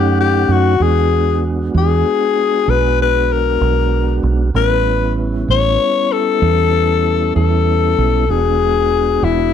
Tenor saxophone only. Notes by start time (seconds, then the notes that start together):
Already playing: G4
0.21 G4
0.52 F#4
0.82 G#4
1.78 G#4
2.70 B4
3.02 B4
3.32 A#4
4.56 B4
5.51 C#5
6.12 A4
7.36 A4
8.30 G#4
9.24 E4